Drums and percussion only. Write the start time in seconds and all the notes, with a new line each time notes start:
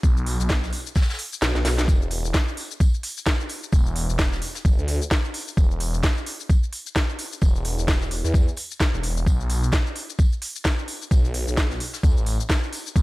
0.03 kick, tambourine, shaker
0.17 shaker
0.26 open hi-hat, tambourine
0.40 shaker
0.49 kick, snare, tambourine, shaker
0.64 snare, shaker
0.73 open hi-hat, tambourine
0.86 shaker
0.95 kick, snare, tambourine, shaker
1.02 snare, tambourine
1.09 snare, tambourine, shaker
1.13 snare, tambourine
1.19 open hi-hat, tambourine
1.33 shaker
1.42 snare, tambourine, shaker
1.55 snare, shaker
1.65 snare, open hi-hat, tambourine
1.78 snare, shaker
1.88 kick, tambourine, shaker
2.02 shaker
2.10 open hi-hat, tambourine
2.25 shaker
2.34 kick, snare, tambourine, shaker
2.48 shaker
2.57 open hi-hat, tambourine
2.71 shaker
2.80 kick, tambourine, shaker
2.94 closed hi-hat, shaker
3.03 open hi-hat, tambourine
3.17 shaker
3.26 kick, snare, tambourine, shaker
3.40 shaker
3.49 open hi-hat, tambourine
3.63 shaker
3.72 kick, tambourine, shaker
3.86 closed hi-hat, shaker
3.96 open hi-hat, tambourine
4.10 shaker
4.18 kick, snare, tambourine, shaker
4.32 snare, shaker
4.42 open hi-hat, tambourine
4.55 snare, shaker
4.65 kick, tambourine, shaker
4.79 shaker
4.88 open hi-hat, tambourine
5.02 shaker
5.11 kick, snare, tambourine, shaker
5.25 shaker
5.34 open hi-hat, tambourine
5.48 shaker
5.57 kick, tambourine, shaker
5.71 shaker
5.80 open hi-hat, tambourine
5.94 shaker
6.03 kick, snare, tambourine, shaker
6.17 shaker
6.26 open hi-hat, tambourine
6.40 shaker
6.49 kick, tambourine, shaker
6.63 closed hi-hat, shaker
6.73 open hi-hat, tambourine
6.86 shaker
6.96 kick, snare, tambourine, shaker
7.10 shaker
7.19 open hi-hat, tambourine
7.33 shaker
7.41 kick, tambourine, shaker
7.55 closed hi-hat, shaker
7.65 open hi-hat, tambourine
7.79 shaker
7.88 kick, snare, tambourine, shaker
8.01 snare, shaker
8.11 open hi-hat, tambourine
8.24 snare, shaker
8.34 kick, tambourine, shaker
8.48 shaker
8.57 open hi-hat, tambourine
8.71 shaker
8.80 kick, snare, tambourine, shaker
8.94 shaker
9.03 open hi-hat, tambourine
9.17 shaker
9.26 kick, tambourine, shaker
9.40 shaker
9.50 open hi-hat, tambourine
9.63 shaker
9.72 kick, snare, tambourine, shaker
9.86 shaker
9.95 open hi-hat, tambourine
10.10 shaker
10.19 kick, tambourine, shaker
10.32 closed hi-hat, shaker
10.42 open hi-hat, tambourine
10.56 shaker
10.64 kick, snare, tambourine, shaker
10.79 shaker
10.88 open hi-hat, tambourine
11.02 shaker
11.11 kick, tambourine, shaker
11.25 closed hi-hat, shaker
11.34 open hi-hat, tambourine
11.48 shaker
11.57 kick, snare, tambourine, shaker
11.71 snare, shaker
11.80 open hi-hat, tambourine
11.93 snare, shaker
12.03 kick, tambourine, shaker
12.17 shaker
12.26 open hi-hat, tambourine
12.40 shaker
12.49 kick, snare, tambourine, shaker
12.63 shaker
12.72 open hi-hat, tambourine
12.86 shaker
12.96 kick, tambourine, shaker